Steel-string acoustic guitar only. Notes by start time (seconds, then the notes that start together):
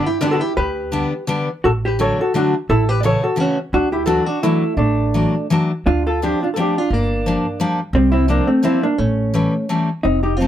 0.21 D3 G3 B3 D4
0.92 D3 G3 B3 D4
1.27 D3 G3 B3 D4
1.99 D3 F#3 A3 D4
2.34 D3 F#3 A3 D4
3.03 C#3 E3 A3 C#4
3.36 C#3 E3 A3 C#4
4.06 E3 F#3 A3 D4
4.43 E3 F#3 A3 D4
5.14 E3 F#3 A3 D4
5.50 E3 F#3 A3 D4
6.22 F3 A3 C4 D4
6.56 F3 A3 C4 D4
7.26 F3 G3 A#3 D4
7.60 F3 G3 A#3 D4
8.28 F3 G3 A#3 C4
8.63 F3 G3 A#3 C4
9.34 E3 G3 A3 C#4
9.69 E3 G3 A3 C#4
10.41 F3 A3 C4 D#4